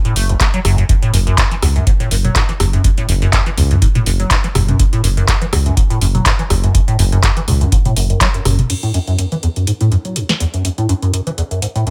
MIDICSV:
0, 0, Header, 1, 4, 480
1, 0, Start_track
1, 0, Key_signature, 3, "minor"
1, 0, Tempo, 487805
1, 878, Time_signature, 4, 2, 24, 8
1, 11711, End_track
2, 0, Start_track
2, 0, Title_t, "Acid bass"
2, 0, Program_c, 0, 38
2, 48, Note_on_c, 0, 45, 102
2, 138, Note_off_c, 0, 45, 0
2, 159, Note_on_c, 0, 57, 72
2, 289, Note_on_c, 0, 30, 97
2, 303, Note_off_c, 0, 57, 0
2, 349, Note_off_c, 0, 30, 0
2, 398, Note_on_c, 0, 57, 79
2, 470, Note_off_c, 0, 57, 0
2, 528, Note_on_c, 0, 54, 102
2, 588, Note_off_c, 0, 54, 0
2, 638, Note_on_c, 0, 42, 103
2, 746, Note_off_c, 0, 42, 0
2, 769, Note_on_c, 0, 42, 75
2, 829, Note_off_c, 0, 42, 0
2, 878, Note_on_c, 0, 42, 84
2, 921, Note_off_c, 0, 42, 0
2, 1009, Note_on_c, 0, 45, 102
2, 1099, Note_off_c, 0, 45, 0
2, 1118, Note_on_c, 0, 42, 100
2, 1161, Note_off_c, 0, 42, 0
2, 1249, Note_on_c, 0, 42, 102
2, 1339, Note_off_c, 0, 42, 0
2, 1358, Note_on_c, 0, 42, 82
2, 1430, Note_off_c, 0, 42, 0
2, 1489, Note_on_c, 0, 52, 99
2, 1525, Note_off_c, 0, 52, 0
2, 1598, Note_on_c, 0, 40, 102
2, 1641, Note_off_c, 0, 40, 0
2, 1729, Note_on_c, 0, 42, 76
2, 1819, Note_off_c, 0, 42, 0
2, 1968, Note_on_c, 0, 45, 103
2, 2058, Note_off_c, 0, 45, 0
2, 2077, Note_on_c, 0, 42, 97
2, 2121, Note_off_c, 0, 42, 0
2, 2208, Note_on_c, 0, 54, 74
2, 2317, Note_on_c, 0, 42, 86
2, 2332, Note_off_c, 0, 54, 0
2, 2389, Note_off_c, 0, 42, 0
2, 2449, Note_on_c, 0, 52, 103
2, 2485, Note_off_c, 0, 52, 0
2, 2558, Note_on_c, 0, 40, 101
2, 2601, Note_off_c, 0, 40, 0
2, 2690, Note_on_c, 0, 42, 74
2, 2779, Note_off_c, 0, 42, 0
2, 2798, Note_on_c, 0, 42, 81
2, 2841, Note_off_c, 0, 42, 0
2, 2929, Note_on_c, 0, 45, 104
2, 3019, Note_off_c, 0, 45, 0
2, 3040, Note_on_c, 0, 42, 98
2, 3082, Note_off_c, 0, 42, 0
2, 3169, Note_on_c, 0, 42, 99
2, 3259, Note_off_c, 0, 42, 0
2, 3279, Note_on_c, 0, 42, 82
2, 3350, Note_off_c, 0, 42, 0
2, 3409, Note_on_c, 0, 52, 99
2, 3445, Note_off_c, 0, 52, 0
2, 3518, Note_on_c, 0, 40, 105
2, 3561, Note_off_c, 0, 40, 0
2, 3650, Note_on_c, 0, 42, 76
2, 3739, Note_off_c, 0, 42, 0
2, 3759, Note_on_c, 0, 44, 83
2, 3801, Note_off_c, 0, 44, 0
2, 3889, Note_on_c, 0, 45, 104
2, 3979, Note_off_c, 0, 45, 0
2, 3999, Note_on_c, 0, 42, 103
2, 4041, Note_off_c, 0, 42, 0
2, 4130, Note_on_c, 0, 54, 75
2, 4239, Note_on_c, 0, 42, 84
2, 4254, Note_off_c, 0, 54, 0
2, 4310, Note_off_c, 0, 42, 0
2, 4370, Note_on_c, 0, 52, 104
2, 4405, Note_off_c, 0, 52, 0
2, 4479, Note_on_c, 0, 40, 99
2, 4521, Note_off_c, 0, 40, 0
2, 4611, Note_on_c, 0, 42, 73
2, 4700, Note_off_c, 0, 42, 0
2, 4720, Note_on_c, 0, 42, 87
2, 4762, Note_off_c, 0, 42, 0
2, 4849, Note_on_c, 0, 45, 103
2, 4939, Note_off_c, 0, 45, 0
2, 4958, Note_on_c, 0, 42, 101
2, 5001, Note_off_c, 0, 42, 0
2, 5090, Note_on_c, 0, 42, 101
2, 5179, Note_off_c, 0, 42, 0
2, 5329, Note_on_c, 0, 52, 103
2, 5365, Note_off_c, 0, 52, 0
2, 5438, Note_on_c, 0, 40, 99
2, 5481, Note_off_c, 0, 40, 0
2, 5569, Note_on_c, 0, 42, 77
2, 5659, Note_off_c, 0, 42, 0
2, 5677, Note_on_c, 0, 44, 82
2, 5721, Note_off_c, 0, 44, 0
2, 5809, Note_on_c, 0, 45, 105
2, 5899, Note_off_c, 0, 45, 0
2, 5917, Note_on_c, 0, 42, 101
2, 5961, Note_off_c, 0, 42, 0
2, 6048, Note_on_c, 0, 54, 77
2, 6158, Note_on_c, 0, 42, 82
2, 6173, Note_off_c, 0, 54, 0
2, 6230, Note_off_c, 0, 42, 0
2, 6289, Note_on_c, 0, 52, 101
2, 6325, Note_off_c, 0, 52, 0
2, 6399, Note_on_c, 0, 40, 102
2, 6441, Note_off_c, 0, 40, 0
2, 6529, Note_on_c, 0, 42, 75
2, 6619, Note_off_c, 0, 42, 0
2, 6638, Note_on_c, 0, 42, 83
2, 6681, Note_off_c, 0, 42, 0
2, 6768, Note_on_c, 0, 45, 105
2, 6858, Note_off_c, 0, 45, 0
2, 6877, Note_on_c, 0, 42, 101
2, 6921, Note_off_c, 0, 42, 0
2, 7008, Note_on_c, 0, 42, 101
2, 7098, Note_off_c, 0, 42, 0
2, 7249, Note_on_c, 0, 52, 105
2, 7285, Note_off_c, 0, 52, 0
2, 7358, Note_on_c, 0, 40, 101
2, 7401, Note_off_c, 0, 40, 0
2, 7489, Note_on_c, 0, 42, 75
2, 7579, Note_off_c, 0, 42, 0
2, 7599, Note_on_c, 0, 44, 86
2, 7641, Note_off_c, 0, 44, 0
2, 7730, Note_on_c, 0, 45, 101
2, 7819, Note_off_c, 0, 45, 0
2, 7839, Note_on_c, 0, 42, 74
2, 7910, Note_off_c, 0, 42, 0
2, 7970, Note_on_c, 0, 42, 77
2, 8059, Note_off_c, 0, 42, 0
2, 8078, Note_on_c, 0, 54, 100
2, 8150, Note_off_c, 0, 54, 0
2, 8210, Note_on_c, 0, 42, 77
2, 8270, Note_off_c, 0, 42, 0
2, 8318, Note_on_c, 0, 42, 102
2, 8450, Note_on_c, 0, 54, 76
2, 8465, Note_off_c, 0, 42, 0
2, 8485, Note_off_c, 0, 54, 0
2, 8558, Note_on_c, 0, 42, 80
2, 8601, Note_off_c, 0, 42, 0
2, 8689, Note_on_c, 0, 45, 100
2, 8779, Note_off_c, 0, 45, 0
2, 8799, Note_on_c, 0, 42, 95
2, 8841, Note_off_c, 0, 42, 0
2, 8930, Note_on_c, 0, 42, 100
2, 9019, Note_off_c, 0, 42, 0
2, 9038, Note_on_c, 0, 42, 80
2, 9110, Note_off_c, 0, 42, 0
2, 9169, Note_on_c, 0, 52, 95
2, 9205, Note_off_c, 0, 52, 0
2, 9279, Note_on_c, 0, 40, 97
2, 9321, Note_off_c, 0, 40, 0
2, 9410, Note_on_c, 0, 42, 75
2, 9499, Note_off_c, 0, 42, 0
2, 9519, Note_on_c, 0, 44, 78
2, 9561, Note_off_c, 0, 44, 0
2, 9650, Note_on_c, 0, 45, 101
2, 9739, Note_off_c, 0, 45, 0
2, 9758, Note_on_c, 0, 42, 98
2, 9801, Note_off_c, 0, 42, 0
2, 9889, Note_on_c, 0, 54, 72
2, 9997, Note_on_c, 0, 42, 81
2, 10012, Note_off_c, 0, 54, 0
2, 10069, Note_off_c, 0, 42, 0
2, 10128, Note_on_c, 0, 52, 98
2, 10164, Note_off_c, 0, 52, 0
2, 10237, Note_on_c, 0, 40, 99
2, 10280, Note_off_c, 0, 40, 0
2, 10367, Note_on_c, 0, 42, 69
2, 10458, Note_off_c, 0, 42, 0
2, 10477, Note_on_c, 0, 42, 81
2, 10520, Note_off_c, 0, 42, 0
2, 10607, Note_on_c, 0, 45, 96
2, 10698, Note_off_c, 0, 45, 0
2, 10716, Note_on_c, 0, 42, 99
2, 10760, Note_off_c, 0, 42, 0
2, 10847, Note_on_c, 0, 42, 97
2, 10938, Note_off_c, 0, 42, 0
2, 10956, Note_on_c, 0, 42, 79
2, 11029, Note_off_c, 0, 42, 0
2, 11086, Note_on_c, 0, 52, 98
2, 11123, Note_off_c, 0, 52, 0
2, 11195, Note_on_c, 0, 40, 95
2, 11240, Note_off_c, 0, 40, 0
2, 11327, Note_on_c, 0, 42, 73
2, 11418, Note_off_c, 0, 42, 0
2, 11436, Note_on_c, 0, 44, 79
2, 11480, Note_off_c, 0, 44, 0
2, 11567, Note_on_c, 0, 45, 99
2, 11658, Note_off_c, 0, 45, 0
2, 11677, Note_on_c, 0, 42, 96
2, 11711, Note_off_c, 0, 42, 0
2, 11711, End_track
3, 0, Start_track
3, 0, Title_t, "Analog synth bass"
3, 0, Program_c, 1, 38
3, 158, Note_on_c, 1, 30, 77
3, 336, Note_off_c, 1, 30, 0
3, 638, Note_on_c, 1, 30, 84
3, 816, Note_off_c, 1, 30, 0
3, 1117, Note_on_c, 1, 30, 97
3, 1295, Note_off_c, 1, 30, 0
3, 1598, Note_on_c, 1, 37, 94
3, 1775, Note_off_c, 1, 37, 0
3, 2078, Note_on_c, 1, 30, 88
3, 2256, Note_off_c, 1, 30, 0
3, 2558, Note_on_c, 1, 30, 82
3, 2736, Note_off_c, 1, 30, 0
3, 3038, Note_on_c, 1, 30, 97
3, 3215, Note_off_c, 1, 30, 0
3, 3517, Note_on_c, 1, 37, 97
3, 3695, Note_off_c, 1, 37, 0
3, 3997, Note_on_c, 1, 30, 90
3, 4175, Note_off_c, 1, 30, 0
3, 4478, Note_on_c, 1, 30, 81
3, 4655, Note_off_c, 1, 30, 0
3, 4958, Note_on_c, 1, 30, 98
3, 5136, Note_off_c, 1, 30, 0
3, 5439, Note_on_c, 1, 37, 93
3, 5616, Note_off_c, 1, 37, 0
3, 5919, Note_on_c, 1, 30, 86
3, 6096, Note_off_c, 1, 30, 0
3, 6398, Note_on_c, 1, 30, 85
3, 6576, Note_off_c, 1, 30, 0
3, 6878, Note_on_c, 1, 30, 97
3, 7056, Note_off_c, 1, 30, 0
3, 7358, Note_on_c, 1, 37, 96
3, 7535, Note_off_c, 1, 37, 0
3, 7838, Note_on_c, 1, 30, 93
3, 8016, Note_off_c, 1, 30, 0
3, 8319, Note_on_c, 1, 30, 99
3, 8496, Note_off_c, 1, 30, 0
3, 11711, End_track
4, 0, Start_track
4, 0, Title_t, "Drums"
4, 49, Note_on_c, 9, 42, 35
4, 147, Note_off_c, 9, 42, 0
4, 158, Note_on_c, 9, 46, 100
4, 257, Note_off_c, 9, 46, 0
4, 289, Note_on_c, 9, 42, 38
4, 387, Note_off_c, 9, 42, 0
4, 398, Note_on_c, 9, 36, 116
4, 398, Note_on_c, 9, 42, 85
4, 401, Note_on_c, 9, 39, 108
4, 497, Note_off_c, 9, 36, 0
4, 497, Note_off_c, 9, 42, 0
4, 500, Note_off_c, 9, 39, 0
4, 529, Note_on_c, 9, 42, 37
4, 628, Note_off_c, 9, 42, 0
4, 638, Note_on_c, 9, 37, 65
4, 638, Note_on_c, 9, 46, 91
4, 736, Note_off_c, 9, 37, 0
4, 736, Note_off_c, 9, 46, 0
4, 769, Note_on_c, 9, 42, 37
4, 867, Note_off_c, 9, 42, 0
4, 878, Note_on_c, 9, 36, 120
4, 878, Note_on_c, 9, 42, 85
4, 976, Note_off_c, 9, 36, 0
4, 976, Note_off_c, 9, 42, 0
4, 1009, Note_on_c, 9, 42, 36
4, 1107, Note_off_c, 9, 42, 0
4, 1118, Note_on_c, 9, 46, 98
4, 1216, Note_off_c, 9, 46, 0
4, 1249, Note_on_c, 9, 42, 36
4, 1347, Note_off_c, 9, 42, 0
4, 1358, Note_on_c, 9, 36, 117
4, 1358, Note_on_c, 9, 42, 83
4, 1362, Note_on_c, 9, 39, 114
4, 1456, Note_off_c, 9, 36, 0
4, 1457, Note_off_c, 9, 42, 0
4, 1460, Note_off_c, 9, 39, 0
4, 1490, Note_on_c, 9, 42, 36
4, 1588, Note_off_c, 9, 42, 0
4, 1599, Note_on_c, 9, 37, 69
4, 1599, Note_on_c, 9, 46, 88
4, 1697, Note_off_c, 9, 37, 0
4, 1697, Note_off_c, 9, 46, 0
4, 1730, Note_on_c, 9, 42, 37
4, 1828, Note_off_c, 9, 42, 0
4, 1838, Note_on_c, 9, 36, 114
4, 1838, Note_on_c, 9, 42, 83
4, 1936, Note_off_c, 9, 36, 0
4, 1937, Note_off_c, 9, 42, 0
4, 1969, Note_on_c, 9, 42, 36
4, 2068, Note_off_c, 9, 42, 0
4, 2078, Note_on_c, 9, 46, 99
4, 2177, Note_off_c, 9, 46, 0
4, 2210, Note_on_c, 9, 42, 36
4, 2210, Note_on_c, 9, 47, 79
4, 2308, Note_off_c, 9, 42, 0
4, 2308, Note_off_c, 9, 47, 0
4, 2318, Note_on_c, 9, 36, 110
4, 2319, Note_on_c, 9, 42, 85
4, 2322, Note_on_c, 9, 39, 108
4, 2416, Note_off_c, 9, 36, 0
4, 2417, Note_off_c, 9, 42, 0
4, 2420, Note_off_c, 9, 39, 0
4, 2449, Note_on_c, 9, 42, 37
4, 2548, Note_off_c, 9, 42, 0
4, 2558, Note_on_c, 9, 37, 68
4, 2558, Note_on_c, 9, 46, 87
4, 2657, Note_off_c, 9, 37, 0
4, 2657, Note_off_c, 9, 46, 0
4, 2689, Note_on_c, 9, 42, 37
4, 2788, Note_off_c, 9, 42, 0
4, 2798, Note_on_c, 9, 36, 113
4, 2798, Note_on_c, 9, 42, 86
4, 2896, Note_off_c, 9, 36, 0
4, 2896, Note_off_c, 9, 42, 0
4, 2928, Note_on_c, 9, 42, 37
4, 3026, Note_off_c, 9, 42, 0
4, 3037, Note_on_c, 9, 46, 98
4, 3136, Note_off_c, 9, 46, 0
4, 3168, Note_on_c, 9, 42, 37
4, 3266, Note_off_c, 9, 42, 0
4, 3277, Note_on_c, 9, 42, 86
4, 3278, Note_on_c, 9, 36, 115
4, 3280, Note_on_c, 9, 39, 109
4, 3376, Note_off_c, 9, 36, 0
4, 3376, Note_off_c, 9, 42, 0
4, 3379, Note_off_c, 9, 39, 0
4, 3408, Note_on_c, 9, 42, 37
4, 3507, Note_off_c, 9, 42, 0
4, 3518, Note_on_c, 9, 46, 90
4, 3616, Note_off_c, 9, 46, 0
4, 3649, Note_on_c, 9, 42, 38
4, 3747, Note_off_c, 9, 42, 0
4, 3758, Note_on_c, 9, 36, 114
4, 3758, Note_on_c, 9, 42, 90
4, 3856, Note_off_c, 9, 36, 0
4, 3857, Note_off_c, 9, 42, 0
4, 3890, Note_on_c, 9, 42, 38
4, 3890, Note_on_c, 9, 47, 83
4, 3988, Note_off_c, 9, 42, 0
4, 3988, Note_off_c, 9, 47, 0
4, 3998, Note_on_c, 9, 46, 92
4, 4097, Note_off_c, 9, 46, 0
4, 4129, Note_on_c, 9, 42, 37
4, 4228, Note_off_c, 9, 42, 0
4, 4238, Note_on_c, 9, 36, 111
4, 4238, Note_on_c, 9, 42, 86
4, 4242, Note_on_c, 9, 39, 110
4, 4336, Note_off_c, 9, 36, 0
4, 4337, Note_off_c, 9, 42, 0
4, 4340, Note_off_c, 9, 39, 0
4, 4369, Note_on_c, 9, 42, 38
4, 4468, Note_off_c, 9, 42, 0
4, 4479, Note_on_c, 9, 37, 67
4, 4479, Note_on_c, 9, 46, 88
4, 4479, Note_on_c, 9, 47, 79
4, 4577, Note_off_c, 9, 37, 0
4, 4577, Note_off_c, 9, 46, 0
4, 4577, Note_off_c, 9, 47, 0
4, 4609, Note_on_c, 9, 42, 37
4, 4609, Note_on_c, 9, 47, 89
4, 4708, Note_off_c, 9, 42, 0
4, 4708, Note_off_c, 9, 47, 0
4, 4718, Note_on_c, 9, 36, 112
4, 4718, Note_on_c, 9, 42, 93
4, 4817, Note_off_c, 9, 36, 0
4, 4817, Note_off_c, 9, 42, 0
4, 4849, Note_on_c, 9, 42, 40
4, 4948, Note_off_c, 9, 42, 0
4, 4958, Note_on_c, 9, 46, 94
4, 5057, Note_off_c, 9, 46, 0
4, 5090, Note_on_c, 9, 42, 38
4, 5188, Note_off_c, 9, 42, 0
4, 5198, Note_on_c, 9, 36, 110
4, 5199, Note_on_c, 9, 42, 92
4, 5202, Note_on_c, 9, 39, 116
4, 5296, Note_off_c, 9, 36, 0
4, 5297, Note_off_c, 9, 42, 0
4, 5300, Note_off_c, 9, 39, 0
4, 5329, Note_on_c, 9, 42, 40
4, 5428, Note_off_c, 9, 42, 0
4, 5439, Note_on_c, 9, 37, 68
4, 5439, Note_on_c, 9, 46, 90
4, 5537, Note_off_c, 9, 37, 0
4, 5537, Note_off_c, 9, 46, 0
4, 5569, Note_on_c, 9, 42, 38
4, 5667, Note_off_c, 9, 42, 0
4, 5678, Note_on_c, 9, 36, 113
4, 5678, Note_on_c, 9, 42, 94
4, 5777, Note_off_c, 9, 36, 0
4, 5777, Note_off_c, 9, 42, 0
4, 5810, Note_on_c, 9, 42, 38
4, 5908, Note_off_c, 9, 42, 0
4, 5918, Note_on_c, 9, 46, 97
4, 6017, Note_off_c, 9, 46, 0
4, 6050, Note_on_c, 9, 42, 41
4, 6050, Note_on_c, 9, 47, 80
4, 6148, Note_off_c, 9, 42, 0
4, 6148, Note_off_c, 9, 47, 0
4, 6158, Note_on_c, 9, 36, 110
4, 6158, Note_on_c, 9, 42, 90
4, 6161, Note_on_c, 9, 39, 112
4, 6256, Note_off_c, 9, 36, 0
4, 6256, Note_off_c, 9, 42, 0
4, 6259, Note_off_c, 9, 39, 0
4, 6289, Note_on_c, 9, 42, 40
4, 6388, Note_off_c, 9, 42, 0
4, 6399, Note_on_c, 9, 37, 67
4, 6399, Note_on_c, 9, 46, 86
4, 6497, Note_off_c, 9, 37, 0
4, 6497, Note_off_c, 9, 46, 0
4, 6529, Note_on_c, 9, 42, 41
4, 6628, Note_off_c, 9, 42, 0
4, 6638, Note_on_c, 9, 36, 115
4, 6639, Note_on_c, 9, 42, 97
4, 6736, Note_off_c, 9, 36, 0
4, 6737, Note_off_c, 9, 42, 0
4, 6770, Note_on_c, 9, 42, 40
4, 6868, Note_off_c, 9, 42, 0
4, 6878, Note_on_c, 9, 46, 97
4, 6977, Note_off_c, 9, 46, 0
4, 7009, Note_on_c, 9, 42, 40
4, 7108, Note_off_c, 9, 42, 0
4, 7118, Note_on_c, 9, 36, 113
4, 7118, Note_on_c, 9, 42, 93
4, 7121, Note_on_c, 9, 39, 117
4, 7216, Note_off_c, 9, 36, 0
4, 7217, Note_off_c, 9, 42, 0
4, 7220, Note_off_c, 9, 39, 0
4, 7249, Note_on_c, 9, 42, 40
4, 7348, Note_off_c, 9, 42, 0
4, 7358, Note_on_c, 9, 46, 88
4, 7358, Note_on_c, 9, 47, 82
4, 7456, Note_off_c, 9, 46, 0
4, 7456, Note_off_c, 9, 47, 0
4, 7490, Note_on_c, 9, 42, 40
4, 7588, Note_off_c, 9, 42, 0
4, 7598, Note_on_c, 9, 36, 118
4, 7598, Note_on_c, 9, 42, 96
4, 7696, Note_off_c, 9, 36, 0
4, 7696, Note_off_c, 9, 42, 0
4, 7728, Note_on_c, 9, 42, 37
4, 7728, Note_on_c, 9, 47, 84
4, 7827, Note_off_c, 9, 42, 0
4, 7827, Note_off_c, 9, 47, 0
4, 7837, Note_on_c, 9, 46, 95
4, 7936, Note_off_c, 9, 46, 0
4, 7969, Note_on_c, 9, 42, 41
4, 8068, Note_off_c, 9, 42, 0
4, 8078, Note_on_c, 9, 36, 112
4, 8078, Note_on_c, 9, 42, 99
4, 8082, Note_on_c, 9, 39, 115
4, 8176, Note_off_c, 9, 36, 0
4, 8177, Note_off_c, 9, 42, 0
4, 8180, Note_off_c, 9, 39, 0
4, 8209, Note_on_c, 9, 42, 43
4, 8308, Note_off_c, 9, 42, 0
4, 8319, Note_on_c, 9, 37, 62
4, 8319, Note_on_c, 9, 46, 88
4, 8319, Note_on_c, 9, 47, 78
4, 8417, Note_off_c, 9, 37, 0
4, 8417, Note_off_c, 9, 46, 0
4, 8417, Note_off_c, 9, 47, 0
4, 8449, Note_on_c, 9, 42, 40
4, 8449, Note_on_c, 9, 47, 87
4, 8548, Note_off_c, 9, 42, 0
4, 8548, Note_off_c, 9, 47, 0
4, 8559, Note_on_c, 9, 42, 85
4, 8559, Note_on_c, 9, 49, 77
4, 8657, Note_off_c, 9, 42, 0
4, 8657, Note_off_c, 9, 49, 0
4, 8689, Note_on_c, 9, 42, 37
4, 8788, Note_off_c, 9, 42, 0
4, 8799, Note_on_c, 9, 42, 61
4, 8897, Note_off_c, 9, 42, 0
4, 8930, Note_on_c, 9, 42, 35
4, 9028, Note_off_c, 9, 42, 0
4, 9038, Note_on_c, 9, 42, 86
4, 9137, Note_off_c, 9, 42, 0
4, 9170, Note_on_c, 9, 42, 35
4, 9268, Note_off_c, 9, 42, 0
4, 9279, Note_on_c, 9, 42, 61
4, 9377, Note_off_c, 9, 42, 0
4, 9409, Note_on_c, 9, 42, 36
4, 9508, Note_off_c, 9, 42, 0
4, 9518, Note_on_c, 9, 42, 88
4, 9616, Note_off_c, 9, 42, 0
4, 9649, Note_on_c, 9, 42, 36
4, 9747, Note_off_c, 9, 42, 0
4, 9758, Note_on_c, 9, 42, 34
4, 9856, Note_off_c, 9, 42, 0
4, 9888, Note_on_c, 9, 42, 36
4, 9987, Note_off_c, 9, 42, 0
4, 9997, Note_on_c, 9, 42, 87
4, 10095, Note_off_c, 9, 42, 0
4, 10128, Note_on_c, 9, 38, 53
4, 10128, Note_on_c, 9, 42, 37
4, 10227, Note_off_c, 9, 38, 0
4, 10227, Note_off_c, 9, 42, 0
4, 10237, Note_on_c, 9, 42, 64
4, 10336, Note_off_c, 9, 42, 0
4, 10368, Note_on_c, 9, 42, 37
4, 10467, Note_off_c, 9, 42, 0
4, 10477, Note_on_c, 9, 42, 82
4, 10576, Note_off_c, 9, 42, 0
4, 10608, Note_on_c, 9, 42, 36
4, 10706, Note_off_c, 9, 42, 0
4, 10718, Note_on_c, 9, 42, 57
4, 10816, Note_off_c, 9, 42, 0
4, 10848, Note_on_c, 9, 42, 36
4, 10947, Note_off_c, 9, 42, 0
4, 10957, Note_on_c, 9, 42, 84
4, 11056, Note_off_c, 9, 42, 0
4, 11088, Note_on_c, 9, 42, 36
4, 11186, Note_off_c, 9, 42, 0
4, 11197, Note_on_c, 9, 42, 62
4, 11296, Note_off_c, 9, 42, 0
4, 11328, Note_on_c, 9, 42, 34
4, 11426, Note_off_c, 9, 42, 0
4, 11437, Note_on_c, 9, 42, 82
4, 11535, Note_off_c, 9, 42, 0
4, 11568, Note_on_c, 9, 42, 36
4, 11666, Note_off_c, 9, 42, 0
4, 11677, Note_on_c, 9, 42, 33
4, 11711, Note_off_c, 9, 42, 0
4, 11711, End_track
0, 0, End_of_file